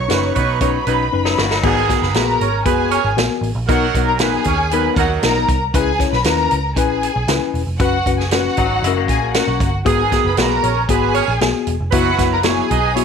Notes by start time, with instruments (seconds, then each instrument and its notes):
Already playing: string section C#5 C#6
0.08 picked electric bass F#1, horn section F#3 D#4 B4, tine electric piano C#4 D#4 B4, snare, closed hi-hat
0.35 picked electric bass B2, horn section F#3 D#4 B4, kick, closed hi-hat
0.60 horn section F#3 D#4 C#5, tine electric piano C#4 D#4 B4, string section B4 B5, kick, closed hi-hat
0.86 picked electric bass B1, horn section F#3 D#4 B4, tine electric piano C#4 D#4 B4, closed hi-hat
1.12 picked electric bass F#1, tine electric piano C#4 D#4 B4
1.25 clean electric guitar F#3 D#4, snare
1.38 picked electric bass G1, clean electric guitar A#3 F#4, snare
1.51 clean electric guitar F#3 D#4, snare
1.63 picked electric bass G#1, horn section D#3 B3 G#4, tine electric piano B3 F#4 G#4, string section G#4 G#5, kick, crash
1.89 tine electric piano B3 F#4 G#4, kick, snare, closed hi-hat
2.02 picked electric bass F#1, string section B4 B5, snare
2.14 picked electric bass A#1, horn section G#3 F#4 B4, tine electric piano B3 F#4 G#4, string section A#4 A#5, snare, closed hi-hat
2.41 picked electric bass G#1, horn section C#4 A#4 C#5, closed hi-hat
2.65 picked electric bass F#1, horn section G#3 F#4 B4, tine electric piano B3 F#4 G#4, string section G#4 G#5, kick, closed hi-hat
2.90 horn section C#4 A#4 C#5, closed hi-hat
3.04 picked electric bass G#1
3.17 picked electric bass A#1, tine electric piano B3 F#4 A#4, snare, closed hi-hat
3.41 picked electric bass A1, open hi-hat
3.55 picked electric bass A#1
3.68 picked electric bass B1, horn section F#3 D#4 A#4, tine electric piano B3 D#4 A#4, string section F#4 F#5, kick, closed hi-hat
3.94 picked electric bass B1, tine electric piano B3 D#4 A#4, kick, closed hi-hat
4.07 string section A#4 A#5
4.19 horn section F#3 D#4 B4, tine electric piano B3 D#4 A#4, string section G#4 G#5, snare, closed hi-hat
4.44 picked electric bass D#2, horn section C#4 A#4 C#5, kick, closed hi-hat
4.71 horn section F#3 D#4 B4, tine electric piano B3 D#4 A#4, closed hi-hat
4.96 picked electric bass D#2, horn section F#3 D#4 A#4, string section F#4 F#5, kick, closed hi-hat
5.22 picked electric bass B1, tine electric piano B3 D#4 A#4, string section A#4 A#5, snare, closed hi-hat
5.49 picked electric bass C2, kick, closed hi-hat
5.74 picked electric bass C#2, tine electric piano C#4 E4 B4, string section G#4 G#5, kick, closed hi-hat
5.99 tine electric piano C#4 E4 C#5, kick, snare, closed hi-hat
6.12 picked electric bass B1, string section B4 B5, snare
6.24 picked electric bass D#2, tine electric piano C#4 E4 B4, string section A#4 A#5, snare, closed hi-hat
6.51 picked electric bass C#2, closed hi-hat
6.76 picked electric bass A#1, tine electric piano C#4 E4 B4, string section G#4 G#5, kick, closed hi-hat
7.03 closed hi-hat
7.16 picked electric bass B1
7.28 picked electric bass C#2, tine electric piano C#4 E4 B4, snare, closed hi-hat
7.54 picked electric bass E1, open hi-hat
7.67 picked electric bass F1
7.79 picked electric bass F#1, tine electric piano C#4 F#4 B4, string section F#4 F#5, kick, closed hi-hat
8.06 picked electric bass F#1, tine electric piano C#4 F#4 B4, kick, closed hi-hat
8.18 string section G#4 G#5, snare
8.31 tine electric piano C#4 F#4 B4, string section F#4 F#5, snare, closed hi-hat
8.57 picked electric bass G#1, clean electric guitar F#3 D#4, kick, closed hi-hat
8.82 picked electric bass F#1, clean electric guitar G#3 E4, closed hi-hat
8.86 tine electric piano C#4 F#4 A#4
8.97 clean electric guitar A#3 F#4
9.08 picked electric bass A#1, string section G#4 G#5, kick, closed hi-hat
9.34 tine electric piano C#4 F#4 A#4, string section F#4 F#5, snare, closed hi-hat
9.48 picked electric bass B1
9.60 picked electric bass G1, kick, closed hi-hat
9.85 picked electric bass G#1, horn section D#3 B3 G#4, tine electric piano B3 F#4 G#4, string section G#4 G#5, kick, closed hi-hat
10.12 tine electric piano B3 F#4 G#4, kick, snare, closed hi-hat
10.25 picked electric bass F#1, string section B4 B5
10.37 picked electric bass B1, horn section G#3 F#4 B4, tine electric piano B3 F#4 G#4, string section A#4 A#5, snare, closed hi-hat
10.63 picked electric bass A#1, horn section C#4 A#4 C#5, closed hi-hat
10.89 picked electric bass G#1, horn section G#3 F#4 B4, tine electric piano B3 F#4 G#4, string section G#4 G#5, kick, closed hi-hat
11.14 horn section C#4 A#4 C#5, closed hi-hat
11.28 picked electric bass A#1
11.41 picked electric bass B1, tine electric piano B3 F#4 G#4, snare, closed hi-hat
11.67 picked electric bass E1, closed hi-hat
11.81 picked electric bass F1
11.90 picked electric bass F#1, horn section F#3 E4 B4, tine electric piano B3 E4 F#4, string section F#4 F#5, kick, closed hi-hat
12.18 picked electric bass F#1, tine electric piano B3 E4 F#4, kick, snare, closed hi-hat
12.32 string section A#4 A#5
12.42 horn section F#3 E4 C#5, tine electric piano B3 E4 F#4, string section G#4 G#5, snare, closed hi-hat
12.69 picked electric bass B1, horn section D#4 B4 D#5, kick, closed hi-hat
12.94 horn section F#3 E4 C#5, tine electric piano B3 E4 F#4, closed hi-hat